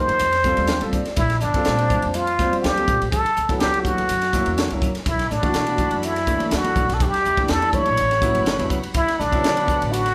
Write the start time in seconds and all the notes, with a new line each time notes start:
Already playing: F3 A#3 D#4 G4 C5
0.08 C2, ride
0.19 F2, hi-hat pedal, ride
0.32 snare, ride
0.44 G3 C4 F4 A4, kick, snare, hi-hat pedal, high conga
0.57 D#2, ride, high conga
0.67 G5, snare, hi-hat pedal, ride, low conga
0.81 C2 G3 C4 F4 A4, ride, high conga
0.93 D5, kick, hi-hat pedal, low conga
1.05 F4 A4, muted upright bass stroke, snare, ride
1.16 A#1 E4, kick, hi-hat pedal, ride, low conga
1.30 snare, ride
1.40 G1 D4, snare, hi-hat pedal
1.54 G3 C4 F4 A4, muted upright bass stroke, kick, ride, high conga
1.65 A#2, snare, hi-hat pedal, ride
1.79 G3 C4 F4 C5, ride
1.90 muted upright bass stroke, kick, hi-hat pedal, high conga, low conga
2.02 F2, ride
2.14 F4, hi-hat pedal, ride
2.27 ride
2.39 G3 C4 F4 C5, kick, snare, hi-hat pedal, high conga
2.53 muted upright bass stroke, ride, high conga
2.63 D2 G4, snare, hi-hat pedal, ride, low conga
2.77 G3 C4 F4 A4, ride, high conga
2.88 A#1, kick, hi-hat pedal, low conga
3.01 A#1 F4 C5, ride
3.12 C#2 A4, kick, hi-hat pedal, ride, low conga
3.26 muted upright bass stroke, ride
3.37 C#2, hi-hat pedal
3.49 F#3 B3 E4 A4, muted upright bass stroke, kick, ride, high conga
3.59 C#2 G4, snare, hi-hat pedal, ride
3.73 F#3 B3 E4 A4, ride
3.84 F#4, muted upright bass stroke, kick, hi-hat pedal, high conga, low conga
3.98 C#2, ride
4.09 F#2, hi-hat pedal, ride
4.21 snare, ride
4.33 F#3 A#3 C#4 E4, kick, snare, hi-hat pedal, high conga
4.46 E2, ride, high conga
4.58 snare, hi-hat pedal, ride, low conga
4.70 C#2 F#3 A#3 C#4 E4, ride, high conga
4.82 kick, hi-hat pedal, low conga
4.94 C#4 E4, muted upright bass stroke, snare, ride
5.05 B1 E4 A4 C#5 D5 B5, kick, hi-hat pedal, ride, low conga
5.19 snare, ride
5.31 A1 D4, snare, hi-hat pedal
5.42 E3 A3 D4 F#4, muted upright bass stroke, kick, ride, high conga
5.54 B2, snare, hi-hat pedal, ride
5.67 E3 A3 D4 F#4, ride
5.78 muted upright bass stroke, kick, hi-hat pedal, high conga, low conga
5.91 F#2, ride
6.03 E4, hi-hat pedal, ride
6.16 snare, ride
6.27 E3 A3 D4 E4, kick, hi-hat pedal, high conga
6.40 muted upright bass stroke, ride, high conga
6.51 D2, snare, hi-hat pedal, ride, low conga
6.56 F#4
6.64 E3 A3 D4 A4, ride, high conga
6.75 B1, kick, hi-hat pedal, low conga
6.89 B1 D4 E4, snare, ride
6.94 A4
6.99 E2 G4 E5 B5, kick, hi-hat pedal, ride, low conga
7.14 muted upright bass stroke, snare, ride
7.25 E2, hi-hat pedal
7.37 E3 A3 D4 G4, muted upright bass stroke, kick, ride, high conga
7.48 E2 A4, snare, hi-hat pedal, ride
7.62 E3 A3 D4 E4, ride
7.73 C#5, muted upright bass stroke, kick, hi-hat pedal, high conga, low conga
7.86 A#1, ride
7.96 A1 C#5 F#5, hi-hat pedal, ride
8.11 snare, ride
8.21 C#3 F#3 B3 E4, kick, hi-hat pedal, high conga
8.35 G1, ride, high conga
8.46 snare, hi-hat pedal, ride, low conga
8.59 E2 C#3 F#3 B3 E4, ride, high conga
8.70 kick, hi-hat pedal, low conga
8.83 B3 E4, muted upright bass stroke, ride
8.94 D2 E4 D5, kick, hi-hat pedal, ride, low conga
9.08 snare, ride
9.19 B1 D4, snare, hi-hat pedal
9.32 C#3 F#3 B3 E4, muted upright bass stroke, kick, ride, high conga
9.44 D3, snare, hi-hat pedal, ride
9.57 D3 F#3 B3 D4, ride
9.67 muted upright bass stroke, kick, hi-hat pedal, high conga, low conga
9.82 A1, ride
9.92 F#4, hi-hat pedal, ride
10.06 snare, ride